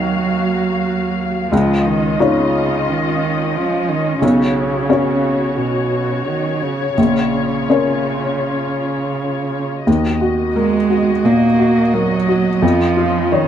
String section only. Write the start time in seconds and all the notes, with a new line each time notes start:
Already playing: A#3 F#4 F5
1.51 C#4 F4 D#5
4.21 F#4 C#5
6.98 C#4 F4
9.86 A#3 F#4 D#5
12.63 C#4 F4